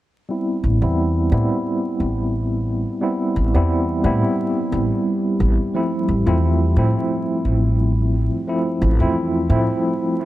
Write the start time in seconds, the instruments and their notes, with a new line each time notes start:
0.29 ambient pad G3 G4, tine electric piano G3 B3 C4 E4
0.64 upright bass A1
0.81 upright bass E2, tine electric piano G3 B3 C4 E4
1.31 upright bass A2, tine electric piano G3 B3 C4 E4
2.00 upright bass A1
3.01 tine electric piano G3 B3 C4 E4
3.36 upright bass A1
3.54 upright bass E2, tine electric piano G3 B3 C4 E4
4.04 upright bass A2, tine electric piano G3 B3 C4 E4
4.72 upright bass A1
5.40 upright bass A1
5.74 tine electric piano F3 A3 C4 E4
6.09 upright bass A1
6.26 upright bass E2, tine electric piano A3 C4 E4 F4
6.76 upright bass A2, tine electric piano F3 A3 C4 E4
7.45 upright bass A1
8.47 tine electric piano F3 A3 C4 E4
8.82 upright bass A1
8.99 upright bass E2, tine electric piano A3 C4 E4 F4
9.49 upright bass A2, tine electric piano F3 A3 C4 E4